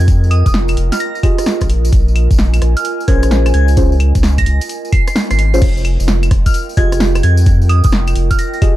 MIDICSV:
0, 0, Header, 1, 6, 480
1, 0, Start_track
1, 0, Key_signature, -4, "minor"
1, 0, Tempo, 461538
1, 82, Time_signature, 4, 2, 24, 8
1, 9117, End_track
2, 0, Start_track
2, 0, Title_t, "Synth bell"
2, 0, Program_c, 0, 98
2, 318, Note_on_c, 0, 87, 91
2, 421, Note_off_c, 0, 87, 0
2, 475, Note_on_c, 0, 87, 77
2, 530, Note_off_c, 0, 87, 0
2, 957, Note_on_c, 0, 89, 96
2, 1025, Note_off_c, 0, 89, 0
2, 1040, Note_on_c, 0, 94, 90
2, 1142, Note_off_c, 0, 94, 0
2, 1196, Note_on_c, 0, 94, 77
2, 1251, Note_off_c, 0, 94, 0
2, 2877, Note_on_c, 0, 89, 92
2, 3017, Note_off_c, 0, 89, 0
2, 3200, Note_on_c, 0, 92, 90
2, 3388, Note_off_c, 0, 92, 0
2, 3680, Note_on_c, 0, 92, 95
2, 3868, Note_off_c, 0, 92, 0
2, 4558, Note_on_c, 0, 94, 89
2, 4612, Note_off_c, 0, 94, 0
2, 4640, Note_on_c, 0, 94, 78
2, 4742, Note_off_c, 0, 94, 0
2, 5120, Note_on_c, 0, 96, 88
2, 5222, Note_off_c, 0, 96, 0
2, 5278, Note_on_c, 0, 96, 76
2, 5332, Note_off_c, 0, 96, 0
2, 5518, Note_on_c, 0, 96, 93
2, 5585, Note_off_c, 0, 96, 0
2, 5602, Note_on_c, 0, 96, 97
2, 5842, Note_off_c, 0, 96, 0
2, 6719, Note_on_c, 0, 89, 95
2, 6858, Note_off_c, 0, 89, 0
2, 7040, Note_on_c, 0, 92, 91
2, 7228, Note_off_c, 0, 92, 0
2, 7522, Note_on_c, 0, 92, 95
2, 7708, Note_off_c, 0, 92, 0
2, 8001, Note_on_c, 0, 87, 91
2, 8102, Note_off_c, 0, 87, 0
2, 8158, Note_on_c, 0, 87, 80
2, 8212, Note_off_c, 0, 87, 0
2, 8638, Note_on_c, 0, 89, 92
2, 8705, Note_off_c, 0, 89, 0
2, 8722, Note_on_c, 0, 94, 92
2, 8823, Note_off_c, 0, 94, 0
2, 8880, Note_on_c, 0, 94, 77
2, 8933, Note_off_c, 0, 94, 0
2, 9117, End_track
3, 0, Start_track
3, 0, Title_t, "Ambient pad"
3, 0, Program_c, 1, 92
3, 0, Note_on_c, 1, 65, 80
3, 0, Note_on_c, 1, 70, 85
3, 0, Note_on_c, 1, 75, 78
3, 0, Note_on_c, 1, 79, 84
3, 1763, Note_off_c, 1, 79, 0
3, 2170, Note_on_c, 1, 80, 88
3, 5830, Note_off_c, 1, 65, 0
3, 5842, Note_on_c, 1, 65, 73
3, 5843, Note_off_c, 1, 80, 0
3, 5844, Note_off_c, 1, 70, 0
3, 6137, Note_on_c, 1, 70, 87
3, 6244, Note_on_c, 1, 79, 80
3, 9117, Note_off_c, 1, 65, 0
3, 9117, Note_off_c, 1, 70, 0
3, 9117, Note_off_c, 1, 75, 0
3, 9117, Note_off_c, 1, 79, 0
3, 9117, End_track
4, 0, Start_track
4, 0, Title_t, "Synth stab"
4, 0, Program_c, 2, 62
4, 0, Note_on_c, 2, 65, 76
4, 0, Note_on_c, 2, 67, 69
4, 0, Note_on_c, 2, 68, 70
4, 0, Note_on_c, 2, 75, 83
4, 1262, Note_off_c, 2, 65, 0
4, 1262, Note_off_c, 2, 67, 0
4, 1262, Note_off_c, 2, 68, 0
4, 1262, Note_off_c, 2, 75, 0
4, 1281, Note_on_c, 2, 65, 76
4, 1281, Note_on_c, 2, 67, 70
4, 1281, Note_on_c, 2, 68, 69
4, 1281, Note_on_c, 2, 75, 84
4, 1752, Note_off_c, 2, 65, 0
4, 1752, Note_off_c, 2, 67, 0
4, 1752, Note_off_c, 2, 68, 0
4, 1752, Note_off_c, 2, 75, 0
4, 3201, Note_on_c, 2, 68, 68
4, 3201, Note_on_c, 2, 72, 85
4, 3202, Note_on_c, 2, 61, 76
4, 3202, Note_on_c, 2, 70, 69
4, 3909, Note_off_c, 2, 72, 0
4, 3910, Note_off_c, 2, 61, 0
4, 3912, Note_off_c, 2, 68, 0
4, 3912, Note_off_c, 2, 70, 0
4, 3922, Note_on_c, 2, 61, 88
4, 3922, Note_on_c, 2, 65, 80
4, 3922, Note_on_c, 2, 68, 81
4, 3922, Note_on_c, 2, 72, 99
4, 4094, Note_off_c, 2, 61, 0
4, 4094, Note_off_c, 2, 65, 0
4, 4094, Note_off_c, 2, 68, 0
4, 4094, Note_off_c, 2, 72, 0
4, 5758, Note_on_c, 2, 65, 85
4, 5759, Note_on_c, 2, 61, 95
4, 5759, Note_on_c, 2, 68, 85
4, 5759, Note_on_c, 2, 72, 102
4, 5832, Note_off_c, 2, 65, 0
4, 5833, Note_off_c, 2, 61, 0
4, 5833, Note_off_c, 2, 68, 0
4, 5833, Note_off_c, 2, 72, 0
4, 7043, Note_on_c, 2, 67, 72
4, 7043, Note_on_c, 2, 75, 88
4, 7044, Note_on_c, 2, 65, 77
4, 7044, Note_on_c, 2, 68, 69
4, 8943, Note_off_c, 2, 65, 0
4, 8943, Note_off_c, 2, 67, 0
4, 8943, Note_off_c, 2, 68, 0
4, 8943, Note_off_c, 2, 75, 0
4, 8961, Note_on_c, 2, 68, 70
4, 8962, Note_on_c, 2, 65, 79
4, 8962, Note_on_c, 2, 67, 71
4, 8962, Note_on_c, 2, 75, 85
4, 9117, Note_off_c, 2, 65, 0
4, 9117, Note_off_c, 2, 67, 0
4, 9117, Note_off_c, 2, 68, 0
4, 9117, Note_off_c, 2, 75, 0
4, 9117, End_track
5, 0, Start_track
5, 0, Title_t, "Sub bass"
5, 0, Program_c, 3, 38
5, 0, Note_on_c, 3, 41, 103
5, 454, Note_off_c, 3, 41, 0
5, 480, Note_on_c, 3, 29, 103
5, 789, Note_off_c, 3, 29, 0
5, 802, Note_on_c, 3, 29, 85
5, 943, Note_off_c, 3, 29, 0
5, 1680, Note_on_c, 3, 34, 89
5, 1989, Note_off_c, 3, 34, 0
5, 2004, Note_on_c, 3, 34, 100
5, 2374, Note_off_c, 3, 34, 0
5, 2400, Note_on_c, 3, 34, 100
5, 2710, Note_off_c, 3, 34, 0
5, 2724, Note_on_c, 3, 34, 86
5, 2864, Note_off_c, 3, 34, 0
5, 3203, Note_on_c, 3, 34, 90
5, 3669, Note_off_c, 3, 34, 0
5, 3684, Note_on_c, 3, 37, 103
5, 4294, Note_off_c, 3, 37, 0
5, 4320, Note_on_c, 3, 37, 100
5, 4630, Note_off_c, 3, 37, 0
5, 4643, Note_on_c, 3, 37, 86
5, 4783, Note_off_c, 3, 37, 0
5, 5519, Note_on_c, 3, 32, 91
5, 5829, Note_off_c, 3, 32, 0
5, 5843, Note_on_c, 3, 29, 97
5, 6214, Note_off_c, 3, 29, 0
5, 6239, Note_on_c, 3, 29, 101
5, 6549, Note_off_c, 3, 29, 0
5, 6564, Note_on_c, 3, 29, 88
5, 6704, Note_off_c, 3, 29, 0
5, 7043, Note_on_c, 3, 29, 90
5, 7509, Note_off_c, 3, 29, 0
5, 7524, Note_on_c, 3, 41, 103
5, 8134, Note_off_c, 3, 41, 0
5, 8160, Note_on_c, 3, 29, 101
5, 8469, Note_off_c, 3, 29, 0
5, 8485, Note_on_c, 3, 29, 88
5, 8624, Note_off_c, 3, 29, 0
5, 9117, End_track
6, 0, Start_track
6, 0, Title_t, "Drums"
6, 4, Note_on_c, 9, 54, 77
6, 82, Note_on_c, 9, 36, 115
6, 82, Note_on_c, 9, 42, 69
6, 87, Note_off_c, 9, 54, 0
6, 87, Note_on_c, 9, 54, 65
6, 186, Note_off_c, 9, 36, 0
6, 186, Note_off_c, 9, 42, 0
6, 191, Note_off_c, 9, 54, 0
6, 246, Note_on_c, 9, 54, 39
6, 322, Note_on_c, 9, 46, 107
6, 322, Note_on_c, 9, 75, 84
6, 350, Note_off_c, 9, 54, 0
6, 426, Note_off_c, 9, 46, 0
6, 426, Note_off_c, 9, 75, 0
6, 478, Note_on_c, 9, 42, 39
6, 479, Note_on_c, 9, 36, 99
6, 480, Note_on_c, 9, 54, 83
6, 561, Note_on_c, 9, 38, 117
6, 566, Note_off_c, 9, 54, 0
6, 566, Note_on_c, 9, 54, 58
6, 582, Note_off_c, 9, 42, 0
6, 583, Note_off_c, 9, 36, 0
6, 665, Note_off_c, 9, 38, 0
6, 670, Note_off_c, 9, 54, 0
6, 709, Note_on_c, 9, 54, 38
6, 718, Note_on_c, 9, 42, 69
6, 718, Note_on_c, 9, 75, 85
6, 801, Note_on_c, 9, 46, 98
6, 813, Note_off_c, 9, 54, 0
6, 822, Note_off_c, 9, 42, 0
6, 822, Note_off_c, 9, 75, 0
6, 905, Note_off_c, 9, 46, 0
6, 957, Note_on_c, 9, 54, 80
6, 958, Note_on_c, 9, 38, 59
6, 958, Note_on_c, 9, 42, 67
6, 1042, Note_off_c, 9, 42, 0
6, 1042, Note_off_c, 9, 54, 0
6, 1042, Note_on_c, 9, 42, 68
6, 1042, Note_on_c, 9, 54, 64
6, 1062, Note_off_c, 9, 38, 0
6, 1146, Note_off_c, 9, 42, 0
6, 1146, Note_off_c, 9, 54, 0
6, 1198, Note_on_c, 9, 54, 38
6, 1282, Note_on_c, 9, 36, 103
6, 1283, Note_on_c, 9, 46, 108
6, 1283, Note_on_c, 9, 75, 67
6, 1302, Note_off_c, 9, 54, 0
6, 1386, Note_off_c, 9, 36, 0
6, 1387, Note_off_c, 9, 46, 0
6, 1387, Note_off_c, 9, 75, 0
6, 1440, Note_on_c, 9, 37, 54
6, 1440, Note_on_c, 9, 42, 67
6, 1443, Note_on_c, 9, 54, 74
6, 1519, Note_off_c, 9, 54, 0
6, 1519, Note_on_c, 9, 54, 64
6, 1522, Note_on_c, 9, 38, 115
6, 1544, Note_off_c, 9, 37, 0
6, 1544, Note_off_c, 9, 42, 0
6, 1623, Note_off_c, 9, 54, 0
6, 1626, Note_off_c, 9, 38, 0
6, 1672, Note_on_c, 9, 54, 39
6, 1679, Note_on_c, 9, 36, 61
6, 1680, Note_on_c, 9, 37, 55
6, 1680, Note_on_c, 9, 42, 55
6, 1763, Note_on_c, 9, 46, 92
6, 1776, Note_off_c, 9, 54, 0
6, 1783, Note_off_c, 9, 36, 0
6, 1784, Note_off_c, 9, 37, 0
6, 1784, Note_off_c, 9, 42, 0
6, 1867, Note_off_c, 9, 46, 0
6, 1921, Note_on_c, 9, 42, 39
6, 1921, Note_on_c, 9, 54, 76
6, 2003, Note_off_c, 9, 42, 0
6, 2003, Note_on_c, 9, 36, 113
6, 2003, Note_on_c, 9, 42, 69
6, 2025, Note_off_c, 9, 54, 0
6, 2107, Note_off_c, 9, 36, 0
6, 2107, Note_off_c, 9, 42, 0
6, 2166, Note_on_c, 9, 54, 36
6, 2243, Note_on_c, 9, 46, 110
6, 2243, Note_on_c, 9, 75, 82
6, 2270, Note_off_c, 9, 54, 0
6, 2347, Note_off_c, 9, 46, 0
6, 2347, Note_off_c, 9, 75, 0
6, 2399, Note_on_c, 9, 42, 39
6, 2400, Note_on_c, 9, 36, 101
6, 2403, Note_on_c, 9, 54, 76
6, 2482, Note_on_c, 9, 38, 115
6, 2487, Note_off_c, 9, 54, 0
6, 2487, Note_on_c, 9, 54, 61
6, 2503, Note_off_c, 9, 42, 0
6, 2504, Note_off_c, 9, 36, 0
6, 2586, Note_off_c, 9, 38, 0
6, 2591, Note_off_c, 9, 54, 0
6, 2638, Note_on_c, 9, 42, 69
6, 2638, Note_on_c, 9, 54, 37
6, 2638, Note_on_c, 9, 75, 84
6, 2722, Note_on_c, 9, 37, 53
6, 2722, Note_on_c, 9, 46, 101
6, 2742, Note_off_c, 9, 42, 0
6, 2742, Note_off_c, 9, 54, 0
6, 2742, Note_off_c, 9, 75, 0
6, 2826, Note_off_c, 9, 37, 0
6, 2826, Note_off_c, 9, 46, 0
6, 2877, Note_on_c, 9, 54, 69
6, 2879, Note_on_c, 9, 42, 67
6, 2962, Note_off_c, 9, 42, 0
6, 2962, Note_on_c, 9, 42, 69
6, 2963, Note_off_c, 9, 54, 0
6, 2963, Note_on_c, 9, 54, 56
6, 3066, Note_off_c, 9, 42, 0
6, 3067, Note_off_c, 9, 54, 0
6, 3125, Note_on_c, 9, 54, 39
6, 3202, Note_on_c, 9, 46, 112
6, 3203, Note_on_c, 9, 36, 100
6, 3229, Note_off_c, 9, 54, 0
6, 3306, Note_off_c, 9, 46, 0
6, 3307, Note_off_c, 9, 36, 0
6, 3356, Note_on_c, 9, 54, 69
6, 3359, Note_on_c, 9, 37, 55
6, 3359, Note_on_c, 9, 42, 70
6, 3443, Note_on_c, 9, 38, 114
6, 3446, Note_off_c, 9, 54, 0
6, 3446, Note_on_c, 9, 54, 60
6, 3463, Note_off_c, 9, 37, 0
6, 3463, Note_off_c, 9, 42, 0
6, 3547, Note_off_c, 9, 38, 0
6, 3550, Note_off_c, 9, 54, 0
6, 3598, Note_on_c, 9, 37, 57
6, 3598, Note_on_c, 9, 42, 56
6, 3598, Note_on_c, 9, 75, 82
6, 3599, Note_on_c, 9, 54, 38
6, 3681, Note_on_c, 9, 46, 96
6, 3702, Note_off_c, 9, 37, 0
6, 3702, Note_off_c, 9, 42, 0
6, 3702, Note_off_c, 9, 75, 0
6, 3703, Note_off_c, 9, 54, 0
6, 3785, Note_off_c, 9, 46, 0
6, 3829, Note_on_c, 9, 54, 70
6, 3838, Note_on_c, 9, 42, 39
6, 3921, Note_off_c, 9, 42, 0
6, 3921, Note_on_c, 9, 42, 71
6, 3923, Note_on_c, 9, 36, 117
6, 3927, Note_off_c, 9, 54, 0
6, 3927, Note_on_c, 9, 54, 59
6, 4025, Note_off_c, 9, 42, 0
6, 4027, Note_off_c, 9, 36, 0
6, 4031, Note_off_c, 9, 54, 0
6, 4077, Note_on_c, 9, 54, 39
6, 4161, Note_on_c, 9, 46, 114
6, 4161, Note_on_c, 9, 75, 82
6, 4181, Note_off_c, 9, 54, 0
6, 4265, Note_off_c, 9, 46, 0
6, 4265, Note_off_c, 9, 75, 0
6, 4317, Note_on_c, 9, 42, 39
6, 4317, Note_on_c, 9, 54, 78
6, 4320, Note_on_c, 9, 36, 102
6, 4401, Note_on_c, 9, 38, 118
6, 4408, Note_off_c, 9, 54, 0
6, 4408, Note_on_c, 9, 54, 66
6, 4421, Note_off_c, 9, 42, 0
6, 4424, Note_off_c, 9, 36, 0
6, 4505, Note_off_c, 9, 38, 0
6, 4512, Note_off_c, 9, 54, 0
6, 4555, Note_on_c, 9, 54, 37
6, 4558, Note_on_c, 9, 42, 69
6, 4558, Note_on_c, 9, 75, 78
6, 4560, Note_on_c, 9, 36, 58
6, 4642, Note_on_c, 9, 46, 98
6, 4659, Note_off_c, 9, 54, 0
6, 4662, Note_off_c, 9, 42, 0
6, 4662, Note_off_c, 9, 75, 0
6, 4664, Note_off_c, 9, 36, 0
6, 4746, Note_off_c, 9, 46, 0
6, 4799, Note_on_c, 9, 42, 70
6, 4799, Note_on_c, 9, 54, 81
6, 4882, Note_off_c, 9, 42, 0
6, 4882, Note_on_c, 9, 42, 71
6, 4891, Note_off_c, 9, 54, 0
6, 4891, Note_on_c, 9, 54, 64
6, 4986, Note_off_c, 9, 42, 0
6, 4995, Note_off_c, 9, 54, 0
6, 5042, Note_on_c, 9, 54, 40
6, 5123, Note_on_c, 9, 36, 103
6, 5123, Note_on_c, 9, 46, 115
6, 5123, Note_on_c, 9, 75, 61
6, 5146, Note_off_c, 9, 54, 0
6, 5227, Note_off_c, 9, 36, 0
6, 5227, Note_off_c, 9, 46, 0
6, 5227, Note_off_c, 9, 75, 0
6, 5278, Note_on_c, 9, 37, 56
6, 5278, Note_on_c, 9, 42, 68
6, 5278, Note_on_c, 9, 54, 72
6, 5362, Note_off_c, 9, 54, 0
6, 5362, Note_on_c, 9, 38, 113
6, 5362, Note_on_c, 9, 54, 61
6, 5382, Note_off_c, 9, 37, 0
6, 5382, Note_off_c, 9, 42, 0
6, 5466, Note_off_c, 9, 38, 0
6, 5466, Note_off_c, 9, 54, 0
6, 5517, Note_on_c, 9, 54, 39
6, 5519, Note_on_c, 9, 37, 59
6, 5519, Note_on_c, 9, 42, 57
6, 5602, Note_on_c, 9, 46, 102
6, 5621, Note_off_c, 9, 54, 0
6, 5623, Note_off_c, 9, 37, 0
6, 5623, Note_off_c, 9, 42, 0
6, 5706, Note_off_c, 9, 46, 0
6, 5760, Note_on_c, 9, 42, 39
6, 5765, Note_on_c, 9, 54, 78
6, 5842, Note_off_c, 9, 42, 0
6, 5842, Note_on_c, 9, 42, 68
6, 5842, Note_on_c, 9, 49, 108
6, 5843, Note_on_c, 9, 36, 123
6, 5869, Note_off_c, 9, 54, 0
6, 5946, Note_off_c, 9, 42, 0
6, 5946, Note_off_c, 9, 49, 0
6, 5947, Note_off_c, 9, 36, 0
6, 6003, Note_on_c, 9, 54, 43
6, 6082, Note_on_c, 9, 46, 112
6, 6082, Note_on_c, 9, 75, 79
6, 6107, Note_off_c, 9, 54, 0
6, 6186, Note_off_c, 9, 46, 0
6, 6186, Note_off_c, 9, 75, 0
6, 6239, Note_on_c, 9, 42, 38
6, 6242, Note_on_c, 9, 54, 76
6, 6322, Note_on_c, 9, 38, 122
6, 6324, Note_off_c, 9, 54, 0
6, 6324, Note_on_c, 9, 54, 66
6, 6343, Note_off_c, 9, 42, 0
6, 6426, Note_off_c, 9, 38, 0
6, 6428, Note_off_c, 9, 54, 0
6, 6479, Note_on_c, 9, 42, 67
6, 6479, Note_on_c, 9, 75, 78
6, 6484, Note_on_c, 9, 54, 41
6, 6563, Note_on_c, 9, 36, 108
6, 6563, Note_on_c, 9, 37, 57
6, 6563, Note_on_c, 9, 46, 102
6, 6583, Note_off_c, 9, 42, 0
6, 6583, Note_off_c, 9, 75, 0
6, 6588, Note_off_c, 9, 54, 0
6, 6667, Note_off_c, 9, 36, 0
6, 6667, Note_off_c, 9, 37, 0
6, 6667, Note_off_c, 9, 46, 0
6, 6719, Note_on_c, 9, 42, 68
6, 6720, Note_on_c, 9, 36, 63
6, 6723, Note_on_c, 9, 54, 72
6, 6803, Note_off_c, 9, 42, 0
6, 6803, Note_on_c, 9, 42, 68
6, 6807, Note_off_c, 9, 54, 0
6, 6807, Note_on_c, 9, 54, 69
6, 6824, Note_off_c, 9, 36, 0
6, 6907, Note_off_c, 9, 42, 0
6, 6911, Note_off_c, 9, 54, 0
6, 6961, Note_on_c, 9, 54, 41
6, 7043, Note_on_c, 9, 36, 110
6, 7043, Note_on_c, 9, 46, 117
6, 7065, Note_off_c, 9, 54, 0
6, 7147, Note_off_c, 9, 36, 0
6, 7147, Note_off_c, 9, 46, 0
6, 7200, Note_on_c, 9, 37, 59
6, 7200, Note_on_c, 9, 42, 66
6, 7201, Note_on_c, 9, 54, 76
6, 7283, Note_off_c, 9, 54, 0
6, 7283, Note_on_c, 9, 38, 119
6, 7283, Note_on_c, 9, 54, 66
6, 7304, Note_off_c, 9, 37, 0
6, 7304, Note_off_c, 9, 42, 0
6, 7387, Note_off_c, 9, 38, 0
6, 7387, Note_off_c, 9, 54, 0
6, 7438, Note_on_c, 9, 54, 42
6, 7441, Note_on_c, 9, 37, 60
6, 7441, Note_on_c, 9, 42, 55
6, 7441, Note_on_c, 9, 75, 76
6, 7523, Note_on_c, 9, 46, 100
6, 7542, Note_off_c, 9, 54, 0
6, 7545, Note_off_c, 9, 37, 0
6, 7545, Note_off_c, 9, 42, 0
6, 7545, Note_off_c, 9, 75, 0
6, 7627, Note_off_c, 9, 46, 0
6, 7668, Note_on_c, 9, 54, 90
6, 7759, Note_off_c, 9, 54, 0
6, 7759, Note_on_c, 9, 54, 70
6, 7763, Note_on_c, 9, 36, 126
6, 7763, Note_on_c, 9, 42, 67
6, 7863, Note_off_c, 9, 54, 0
6, 7867, Note_off_c, 9, 36, 0
6, 7867, Note_off_c, 9, 42, 0
6, 7920, Note_on_c, 9, 54, 41
6, 8002, Note_on_c, 9, 46, 110
6, 8002, Note_on_c, 9, 75, 80
6, 8024, Note_off_c, 9, 54, 0
6, 8106, Note_off_c, 9, 46, 0
6, 8106, Note_off_c, 9, 75, 0
6, 8150, Note_on_c, 9, 54, 88
6, 8159, Note_on_c, 9, 42, 36
6, 8160, Note_on_c, 9, 36, 110
6, 8237, Note_off_c, 9, 54, 0
6, 8237, Note_on_c, 9, 54, 65
6, 8242, Note_on_c, 9, 38, 125
6, 8263, Note_off_c, 9, 42, 0
6, 8264, Note_off_c, 9, 36, 0
6, 8341, Note_off_c, 9, 54, 0
6, 8346, Note_off_c, 9, 38, 0
6, 8395, Note_on_c, 9, 54, 46
6, 8399, Note_on_c, 9, 42, 66
6, 8399, Note_on_c, 9, 75, 79
6, 8482, Note_on_c, 9, 46, 100
6, 8499, Note_off_c, 9, 54, 0
6, 8503, Note_off_c, 9, 42, 0
6, 8503, Note_off_c, 9, 75, 0
6, 8586, Note_off_c, 9, 46, 0
6, 8639, Note_on_c, 9, 36, 65
6, 8639, Note_on_c, 9, 42, 63
6, 8639, Note_on_c, 9, 54, 85
6, 8722, Note_off_c, 9, 54, 0
6, 8722, Note_on_c, 9, 54, 72
6, 8723, Note_off_c, 9, 42, 0
6, 8723, Note_on_c, 9, 42, 65
6, 8743, Note_off_c, 9, 36, 0
6, 8826, Note_off_c, 9, 54, 0
6, 8827, Note_off_c, 9, 42, 0
6, 8876, Note_on_c, 9, 54, 38
6, 8963, Note_on_c, 9, 36, 111
6, 8963, Note_on_c, 9, 46, 116
6, 8963, Note_on_c, 9, 75, 61
6, 8980, Note_off_c, 9, 54, 0
6, 9067, Note_off_c, 9, 36, 0
6, 9067, Note_off_c, 9, 46, 0
6, 9067, Note_off_c, 9, 75, 0
6, 9117, End_track
0, 0, End_of_file